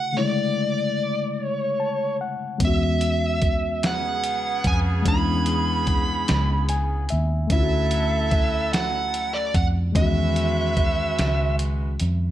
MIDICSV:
0, 0, Header, 1, 6, 480
1, 0, Start_track
1, 0, Tempo, 816327
1, 92, Time_signature, 6, 3, 24, 8
1, 7239, End_track
2, 0, Start_track
2, 0, Title_t, "Lead electric guitar"
2, 0, Program_c, 0, 29
2, 0, Note_on_c, 0, 78, 111
2, 102, Note_on_c, 0, 74, 95
2, 103, Note_off_c, 0, 78, 0
2, 843, Note_off_c, 0, 74, 0
2, 843, Note_on_c, 0, 73, 95
2, 1274, Note_off_c, 0, 73, 0
2, 1557, Note_on_c, 0, 76, 86
2, 2273, Note_on_c, 0, 78, 92
2, 2286, Note_off_c, 0, 76, 0
2, 2745, Note_off_c, 0, 78, 0
2, 2747, Note_on_c, 0, 80, 94
2, 2810, Note_off_c, 0, 80, 0
2, 2988, Note_on_c, 0, 83, 119
2, 3917, Note_off_c, 0, 83, 0
2, 4424, Note_on_c, 0, 76, 102
2, 5132, Note_off_c, 0, 76, 0
2, 5134, Note_on_c, 0, 78, 111
2, 5492, Note_on_c, 0, 74, 100
2, 5504, Note_off_c, 0, 78, 0
2, 5613, Note_on_c, 0, 78, 101
2, 5616, Note_off_c, 0, 74, 0
2, 5677, Note_off_c, 0, 78, 0
2, 5859, Note_on_c, 0, 76, 93
2, 6792, Note_off_c, 0, 76, 0
2, 7239, End_track
3, 0, Start_track
3, 0, Title_t, "Horn section"
3, 0, Program_c, 1, 61
3, 2255, Note_on_c, 1, 59, 69
3, 2257, Note_on_c, 1, 49, 68
3, 2257, Note_on_c, 1, 68, 83
3, 4150, Note_off_c, 1, 59, 0
3, 4151, Note_off_c, 1, 49, 0
3, 4151, Note_off_c, 1, 68, 0
3, 4414, Note_on_c, 1, 69, 91
3, 4417, Note_on_c, 1, 54, 77
3, 4417, Note_on_c, 1, 64, 82
3, 5589, Note_off_c, 1, 69, 0
3, 5591, Note_off_c, 1, 54, 0
3, 5591, Note_off_c, 1, 64, 0
3, 5851, Note_on_c, 1, 71, 83
3, 5852, Note_on_c, 1, 56, 74
3, 5852, Note_on_c, 1, 66, 78
3, 7028, Note_off_c, 1, 71, 0
3, 7029, Note_off_c, 1, 56, 0
3, 7029, Note_off_c, 1, 66, 0
3, 7239, End_track
4, 0, Start_track
4, 0, Title_t, "Reed electric piano"
4, 0, Program_c, 2, 4
4, 0, Control_c, 2, 64, 127
4, 0, Note_on_c, 2, 49, 61
4, 0, Note_on_c, 2, 57, 61
4, 0, Note_on_c, 2, 64, 58
4, 0, Note_on_c, 2, 66, 73
4, 65, Note_off_c, 2, 57, 0
4, 72, Note_off_c, 2, 49, 0
4, 72, Note_on_c, 2, 50, 60
4, 77, Note_off_c, 2, 64, 0
4, 82, Note_on_c, 2, 57, 59
4, 84, Note_off_c, 2, 66, 0
4, 98, Note_on_c, 2, 49, 56
4, 109, Note_on_c, 2, 64, 63
4, 122, Note_on_c, 2, 56, 79
4, 1057, Note_on_c, 2, 81, 73
4, 1278, Note_off_c, 2, 81, 0
4, 1299, Note_on_c, 2, 78, 81
4, 1498, Note_off_c, 2, 50, 0
4, 1504, Note_off_c, 2, 57, 0
4, 1511, Note_off_c, 2, 49, 0
4, 1511, Note_off_c, 2, 56, 0
4, 1517, Note_off_c, 2, 64, 0
4, 1518, Note_on_c, 2, 56, 62
4, 1519, Note_off_c, 2, 78, 0
4, 1534, Note_on_c, 2, 59, 69
4, 1540, Control_c, 2, 64, 0
4, 1552, Note_on_c, 2, 61, 58
4, 1570, Note_on_c, 2, 66, 75
4, 1642, Control_c, 2, 64, 127
4, 2941, Note_off_c, 2, 56, 0
4, 2949, Note_off_c, 2, 59, 0
4, 2951, Note_on_c, 2, 56, 72
4, 2958, Note_off_c, 2, 61, 0
4, 2968, Note_off_c, 2, 66, 0
4, 2969, Note_on_c, 2, 59, 66
4, 2986, Note_on_c, 2, 61, 56
4, 3002, Note_on_c, 2, 62, 62
4, 3025, Note_off_c, 2, 62, 0
4, 3042, Note_on_c, 2, 64, 76
4, 3937, Note_on_c, 2, 80, 76
4, 4158, Note_off_c, 2, 80, 0
4, 4176, Note_on_c, 2, 76, 75
4, 4378, Note_off_c, 2, 56, 0
4, 4387, Note_off_c, 2, 59, 0
4, 4395, Note_on_c, 2, 57, 66
4, 4396, Note_off_c, 2, 61, 0
4, 4398, Note_off_c, 2, 76, 0
4, 4412, Note_on_c, 2, 61, 60
4, 4420, Control_c, 2, 64, 0
4, 4422, Note_off_c, 2, 64, 0
4, 4429, Note_on_c, 2, 64, 66
4, 4445, Note_on_c, 2, 65, 58
4, 4467, Note_off_c, 2, 65, 0
4, 4486, Note_on_c, 2, 66, 73
4, 4522, Control_c, 2, 64, 127
4, 5820, Note_off_c, 2, 57, 0
4, 5829, Note_off_c, 2, 61, 0
4, 5835, Note_on_c, 2, 56, 68
4, 5837, Note_off_c, 2, 64, 0
4, 5853, Note_on_c, 2, 61, 57
4, 5860, Control_c, 2, 64, 0
4, 5865, Note_off_c, 2, 66, 0
4, 5869, Note_on_c, 2, 51, 68
4, 5889, Note_on_c, 2, 66, 71
4, 5976, Control_c, 2, 64, 127
4, 7239, Note_off_c, 2, 51, 0
4, 7239, Note_off_c, 2, 56, 0
4, 7239, Note_off_c, 2, 61, 0
4, 7239, Note_off_c, 2, 66, 0
4, 7239, End_track
5, 0, Start_track
5, 0, Title_t, "Fingered electric bass"
5, 0, Program_c, 3, 33
5, 1535, Note_on_c, 3, 40, 97
5, 2710, Note_off_c, 3, 40, 0
5, 2736, Note_on_c, 3, 41, 93
5, 2950, Note_off_c, 3, 41, 0
5, 2978, Note_on_c, 3, 40, 127
5, 3671, Note_off_c, 3, 40, 0
5, 3705, Note_on_c, 3, 37, 115
5, 4155, Note_off_c, 3, 37, 0
5, 4188, Note_on_c, 3, 39, 79
5, 4397, Note_off_c, 3, 39, 0
5, 4416, Note_on_c, 3, 38, 116
5, 5591, Note_off_c, 3, 38, 0
5, 5619, Note_on_c, 3, 41, 91
5, 5832, Note_off_c, 3, 41, 0
5, 5858, Note_on_c, 3, 40, 109
5, 6552, Note_off_c, 3, 40, 0
5, 6580, Note_on_c, 3, 37, 102
5, 7033, Note_off_c, 3, 37, 0
5, 7063, Note_on_c, 3, 41, 93
5, 7239, Note_off_c, 3, 41, 0
5, 7239, End_track
6, 0, Start_track
6, 0, Title_t, "Drums"
6, 1529, Note_on_c, 9, 36, 127
6, 1530, Note_on_c, 9, 42, 99
6, 1588, Note_off_c, 9, 36, 0
6, 1588, Note_off_c, 9, 42, 0
6, 1770, Note_on_c, 9, 42, 59
6, 1829, Note_off_c, 9, 42, 0
6, 2008, Note_on_c, 9, 42, 46
6, 2012, Note_on_c, 9, 36, 81
6, 2067, Note_off_c, 9, 42, 0
6, 2071, Note_off_c, 9, 36, 0
6, 2254, Note_on_c, 9, 42, 75
6, 2258, Note_on_c, 9, 38, 127
6, 2312, Note_off_c, 9, 42, 0
6, 2317, Note_off_c, 9, 38, 0
6, 2491, Note_on_c, 9, 42, 65
6, 2550, Note_off_c, 9, 42, 0
6, 2730, Note_on_c, 9, 42, 58
6, 2731, Note_on_c, 9, 36, 96
6, 2789, Note_off_c, 9, 42, 0
6, 2790, Note_off_c, 9, 36, 0
6, 2972, Note_on_c, 9, 36, 127
6, 2973, Note_on_c, 9, 42, 98
6, 3030, Note_off_c, 9, 36, 0
6, 3031, Note_off_c, 9, 42, 0
6, 3210, Note_on_c, 9, 42, 58
6, 3269, Note_off_c, 9, 42, 0
6, 3451, Note_on_c, 9, 42, 45
6, 3453, Note_on_c, 9, 36, 90
6, 3510, Note_off_c, 9, 42, 0
6, 3512, Note_off_c, 9, 36, 0
6, 3693, Note_on_c, 9, 42, 69
6, 3698, Note_on_c, 9, 38, 118
6, 3752, Note_off_c, 9, 42, 0
6, 3757, Note_off_c, 9, 38, 0
6, 3931, Note_on_c, 9, 42, 61
6, 3990, Note_off_c, 9, 42, 0
6, 4168, Note_on_c, 9, 42, 54
6, 4227, Note_off_c, 9, 42, 0
6, 4410, Note_on_c, 9, 36, 127
6, 4410, Note_on_c, 9, 42, 105
6, 4469, Note_off_c, 9, 36, 0
6, 4469, Note_off_c, 9, 42, 0
6, 4650, Note_on_c, 9, 42, 61
6, 4709, Note_off_c, 9, 42, 0
6, 4888, Note_on_c, 9, 42, 43
6, 4891, Note_on_c, 9, 36, 94
6, 4947, Note_off_c, 9, 42, 0
6, 4950, Note_off_c, 9, 36, 0
6, 5136, Note_on_c, 9, 42, 66
6, 5140, Note_on_c, 9, 38, 104
6, 5195, Note_off_c, 9, 42, 0
6, 5199, Note_off_c, 9, 38, 0
6, 5374, Note_on_c, 9, 42, 59
6, 5433, Note_off_c, 9, 42, 0
6, 5612, Note_on_c, 9, 36, 95
6, 5612, Note_on_c, 9, 42, 57
6, 5671, Note_off_c, 9, 36, 0
6, 5671, Note_off_c, 9, 42, 0
6, 5851, Note_on_c, 9, 36, 126
6, 5853, Note_on_c, 9, 42, 102
6, 5910, Note_off_c, 9, 36, 0
6, 5912, Note_off_c, 9, 42, 0
6, 6092, Note_on_c, 9, 42, 54
6, 6151, Note_off_c, 9, 42, 0
6, 6331, Note_on_c, 9, 42, 44
6, 6332, Note_on_c, 9, 36, 94
6, 6390, Note_off_c, 9, 42, 0
6, 6391, Note_off_c, 9, 36, 0
6, 6577, Note_on_c, 9, 42, 69
6, 6582, Note_on_c, 9, 38, 127
6, 6636, Note_off_c, 9, 42, 0
6, 6640, Note_off_c, 9, 38, 0
6, 6816, Note_on_c, 9, 42, 59
6, 6875, Note_off_c, 9, 42, 0
6, 7053, Note_on_c, 9, 42, 56
6, 7112, Note_off_c, 9, 42, 0
6, 7239, End_track
0, 0, End_of_file